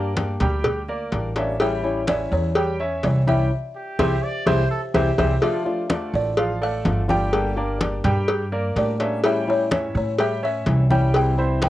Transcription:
Already playing: G2 G3 A#3 D4 G4 A#4 D5
0.16 G3 A#3 D4 G4, cowbell, high conga
0.40 D2 G3 G4 G5, cowbell, high conga, low conga
0.64 muted nylon-string guitar stroke, cowbell, high conga, low conga
0.89 A#3 A#4 D5, high conga
1.12 A1 G3 A#3 D4 G4, cowbell, high conga
1.36 G3 A#3 C#4 D4 G4 C#5 E5, cowbell, high conga
1.59 E3 G3 C#4 E4 G4 E5 G5, cowbell, high conga
1.83 G3 C#4 E4, high conga
2.07 E3 G3 C#4 E4 C#5 D5 E5, cowbell, high conga
2.32 E2 C#5, high conga
2.55 G3 G4 G5, muted nylon-string guitar stroke, cowbell, high conga
2.79 C#4 C#5 E5, high conga
3.03 C2 E3 G3 C#4 E4 D5, cowbell, high conga
3.27 G3 C#4 E4 G4 E5 G5, high conga
3.76 G4
3.99 C2 E3 G3 C4 E4 G4 C5 E5, cowbell, high conga
4.23 D5
4.46 C2 E3 G3 C4 E4 G4 C5 E5, cowbell, high conga
4.71 A4
4.94 C2 E3 G3 C4 E4 G4 C5 E5, cowbell, high conga
5.18 C2 E3 G3 C4 E4 G4 C5 E5, cowbell, high conga
5.41 D3 F3 A3 D4 F4 D5 E5, cowbell, high conga
5.65 A3 D4 F4, high conga
5.89 D3 A3 D4 F4 A4 D5, cowbell, high conga
6.14 A1 D5, high conga
6.37 F3 F4 F5, muted nylon-string guitar stroke, cowbell, high conga
6.61 A3 A4 D5 F5, high conga
6.84 G1 D3 A3 D4 F4, cowbell, high conga
7.08 G3 A3 D4 F4 G4 G5, high conga
7.32 D3 G3 A#3 D4 G4, cowbell, high conga
7.56 G3 A#3 D4 G4 A#4 D5, high conga
7.80 G3 A#3 D4 G4, cowbell, high conga
8.04 G2 G3 G4 G5, cowbell, high conga, low conga
8.28 muted nylon-string guitar stroke, cowbell, high conga
8.52 A#3 A#4 D5, high conga
8.76 A2 G3 A#3 D4 G4 D5, cowbell, high conga
9.00 G3 A#3 C#4 D4 G4 C#5 E5, cowbell, high conga
9.23 E3 G3 C#4 E4 G4 E5 G5, cowbell, high conga
9.47 G3 C#4 E4 C#5, high conga
9.71 E3 G3 C#4 E4 C#5 E5, cowbell, high conga
9.95 A2 C#5, high conga
10.19 G3 G4 E5 G5, muted nylon-string guitar stroke, cowbell, high conga
10.43 C#4 C#5 E5, high conga
10.66 C2 E3 G3 C#4 E4, cowbell, high conga
10.90 G3 C#4 E4 G4 G5, high conga
11.14 C3 E3 G3 C4 E4 G5, cowbell, high conga
11.38 E3 G3 C4 E4 C5 E5, high conga
11.62 E3 G3 C4 E4 G5, cowbell, high conga

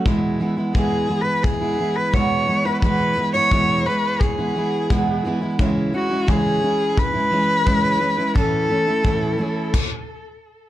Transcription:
0.05 E2 B2 E3 G#3 B3 E4, kick
0.40 E3 G#3 B3 E4
0.57 E3 G#3 B3 E4
0.74 E2 B2 E3 G#3 B3 E4 G#4, kick
1.09 E3 G#3 B3 E4
1.21 B4
1.43 G#4, kick
1.61 E3 G#3 B3 E4
1.78 E3 G#3 B3 E4
1.96 B4
2.13 E2 B2 E3 G#3 B3 E4 C#5, kick
2.47 E3 G#3 B3 E4
2.65 E3 G#3 B3 E4 B4
2.81 E2 B2 E3 G#3 B3 E4 B4, kick
3.17 E3 G#3 B3 E4
3.33 E3 G#3 B3 E4 C#5
3.51 E2 B2 E3 G#3 B3 E4, kick
3.86 E3 G#3 B3 E4 B4
4.20 G#4, kick
4.38 E3 G#3 B3 E4
4.55 E3 G#3 B3 E4
4.90 E2 B2 E3 G#3 B3 E4, kick
5.24 E3 G#3 B3 E4
5.41 E3 G#3 B3 E4
5.59 C#3 E3 G#3 C#4 E4, kick
5.93 E3 G#3 C#4 E4 F#4
6.10 G#3 C#4 E4
6.27 C#3 E3 G#3 C#4 E4 G#4, kick
6.62 E3 G#3 C#4 E4
6.97 B4, kick
7.14 G#3 C#4 E4
7.31 E3 G#3 C#4 E4
7.66 C#3 E3 G#3 C#4 E4, kick
7.99 E3 G#3 C#4 E4
8.17 G#3 C#4 E4
8.35 A2 E3 A3 C#4 E4 A4, kick
8.70 E3 A3 C#4 E4
8.87 A3 C#4 E4
9.04 A2 E3 A3 C#4 E4, kick
9.38 E3 A3 C#4 E4
9.74 kick, crash

